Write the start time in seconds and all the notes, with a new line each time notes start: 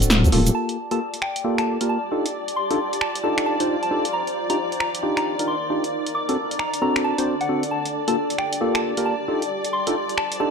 Already playing: D1 C4 D4 F#4 A4
0.02 closed hi-hat, shaker
0.10 snare, shaker
0.24 D2, closed hi-hat, shaker
0.32 D1 A#3 F4 G4 A4, open hi-hat
0.46 closed hi-hat, shaker
0.55 G4 D5 A5
0.69 closed hi-hat
0.83 D5
0.91 A#3 F4 G4 A4 A5, closed hi-hat
1.14 closed hi-hat
1.22 G5, finger snap
1.26 A5
1.36 closed hi-hat
1.44 A#3 F4 G4 A4
1.58 A5, finger snap, closed hi-hat
1.81 A#3 F4 G4 A#4, closed hi-hat
1.89 A5
2.12 D4 D#4 F4 G4 A4
2.26 closed hi-hat
2.35 C5
2.48 closed hi-hat
2.56 C6
2.71 D4 D#4 F4 G4 A4, closed hi-hat
2.93 closed hi-hat
3.01 G5 A5, finger snap
3.15 closed hi-hat
3.24 D4 D#4 F4 G4 A4 A5
3.38 finger snap, closed hi-hat
3.46 A5
3.60 D4 D#4 F4 G4 C5, closed hi-hat
3.83 A5, closed hi-hat
3.91 D4 D#4 F4 G4 A4
4.05 closed hi-hat
4.13 D#4 A#5
4.26 A#4, closed hi-hat
4.50 D4 D#4 F4 G4 A#5, closed hi-hat
4.72 closed hi-hat
4.80 A#5, finger snap
4.95 closed hi-hat
5.03 D4 D#4 F4 G4
5.17 A#5, finger snap, closed hi-hat
5.39 D4 D#4 F4 A#4, closed hi-hat
5.48 C6
5.70 D4 D#4 F4 G4
5.84 closed hi-hat
5.92 D4
6.06 closed hi-hat
6.15 D6
6.29 C4 D4 F#4 A4, closed hi-hat
6.51 closed hi-hat
6.58 A4 A#5, finger snap
6.74 D5, closed hi-hat
6.82 C4 D4 F#4 A4 A#5
6.96 finger snap, closed hi-hat
7.04 A5
7.18 C4 D4 F#4 C5, closed hi-hat
7.41 F#5, closed hi-hat
7.49 C4 D4 F#4 A4
7.63 closed hi-hat
7.71 G4 D5 A5
7.86 A5, closed hi-hat
8.08 A#3 F4 G4 A4 A5, closed hi-hat
8.30 closed hi-hat
8.38 G5, finger snap
8.53 closed hi-hat
8.61 A#3 F4 G4 A4
8.75 A5, finger snap, closed hi-hat
8.97 A#3 F4 G4 A#4, closed hi-hat
9.06 A5
9.28 D4 D#4 F4 G4 A4
9.42 closed hi-hat
9.65 closed hi-hat
9.73 C5 C6
9.87 D4 D#4 F4 G4 A4 G5, closed hi-hat
10.09 closed hi-hat
10.18 A5, finger snap
10.32 closed hi-hat
10.40 D4 D#4 F4 G4 A4 A5